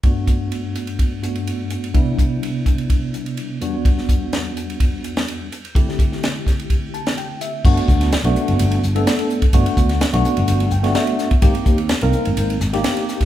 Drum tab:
CC |----------------|----------------|----------------|----------------|
RD |x-x-x-xxx-xxx-xx|x-x-x-xxx-xxx-x-|x-x-x-xxx-xxx-xx|x-x-x-xxx-xxx-x-|
HH |--p---p---p---p-|--p---p---p---p-|--p---p---p---p-|--p---p---p---p-|
SD |----------------|----------------|-o--o------o----|-o-oo-o----o----|
BD |o-o-----o-------|o-o---o-o-------|o-o-----o-------|o-o---o-o-------|

CC |x---------------|----------------|----------------|
RD |-x-xxx-xxx-xxx-x|xx-xxx-xxx-xxx-x|xx-xxx-xxx-xxx-x|
HH |--p-p-p-p-p-p-p-|p-p-p-p-p-p-p-p-|p-p-p-p-p-p-p-p-|
SD |---oo-------o---|---oo------oo-o-|----o-----oooooo|
BD |o-o------------o|o-o------------o|o-o------------o|